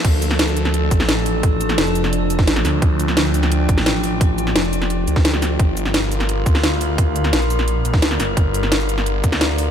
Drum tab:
CC |x---------------|----------------|----------------|----------------|
HH |x-x-x-x-x-x-x-o-|x-x-x-x-x-x-x-o-|x-x-x-x-x-x-x-o-|x-x-x-x-x-x-x-o-|
SH |--x--xx---x---x-|--x--xx---x---x-|--x--xx---x---x-|--x--xx---x---x-|
SD |---oo--o---oo---|---oo--o---oooo-|---oo--o---oo---|---oo--o---oooo-|
BD |o---------o-----|o----------o----|o---------o-----|o----------o----|

CC |----------------|----------------|----------------|
HH |x-x-x-x-x-x-x-o-|x-x-x-x-x-x-x-o-|x-x-x-x-x-x-x-o-|
SH |--x--xx---x---x-|--x--xx---x---x-|--x--xx---x---x-|
SD |---oo--o---oo---|---oo--o---oooo-|---oo--o---oo---|
BD |o---------o-----|o----------o----|o---------o-----|